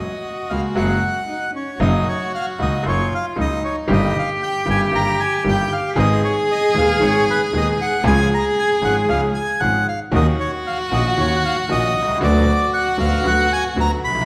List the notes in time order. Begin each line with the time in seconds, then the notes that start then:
Already playing: F#4
0.00 D#5
0.50 C#2 C#3 G#3 A#3 F#4 F5
0.75 F#1 F#2 C#3 F#3 G#3 A#3 F#4 F#5
1.28 D#4
1.54 C#4 C#5
1.78 F#1 F#2 C#3 F#3 A#3 D#4 F#4 D#5
2.08 C#5
2.35 F5
2.59 C#2 C#3 F#3 A#3 D#4 D#5
2.83 F#1 F#2 C#3 F#3 A#3 D#4 F4
2.88 C#5
3.15 F5
3.36 C#2 C#3 F#3 A#3 D#4
3.41 D#5
3.65 C#5
3.87 G1 G2 D#3 G3 A#3 G4
3.93 D#5
4.19 F5
4.43 G5
4.66 G1 G2 D#3 G3 A#3 G4
4.70 G#5
4.91 G1 G2 D#3 G3 A#3 G4 A#5
5.20 G#5
5.44 G1 G2 D#3 G3 A#3 G4
5.49 G5
5.72 F5
5.96 G#1 G#2 D#3 G#3 B3 G#4 D#5
6.24 C#5
6.51 D#5
6.74 D#1 D#2 D#3 G#3 B3 G#4 F5
7.00 G#1 G#2 D#3 G#3 B3 G#4 C#5
7.30 B4
7.53 D#1 D#2 D#3 G#3 B3 G#4 D#5
7.81 F#5
8.03 C#2 C#3 F3 G#3 C#4 G#4 G#5
8.34 A#5
8.59 G#5
8.82 G#1 G#2 F3 G#3 C#4 G#4 F#5
9.08 C#2 C#3 F3 G#3 C#4 G#4 F5
9.35 G#5
9.60 G#1 G#2 F3 G#3 C#4 G#4 F#5
9.88 F5
10.11 D#2 D#3 A#3 C#4 F#4
10.16 D#5
10.40 C#5
10.67 F5
10.91 A#1 A#2 D#3 A#3 C#4 F#4 D#5
11.17 D#2 D#3 A#3 C#4 F#4 C#5
11.36 F#5
11.45 F5
11.69 A#1 A#2 D#3 A#3 C#4 F#4 D#5
11.95 C2
12.03 B1
12.08 C2
12.15 C#2
12.19 D2 D3 F#3 B3 F#4
12.24 D5
12.74 F#5
12.98 D2 D3 F#3 B3 F#4 F5
13.24 D2 D3 F#3 B3 F#4 F#5
13.53 G#5
13.76 D2 D3 F#3 B3 F#4
13.80 A#5
14.03 B1 B5
14.08 A#1
14.15 B1
14.21 C2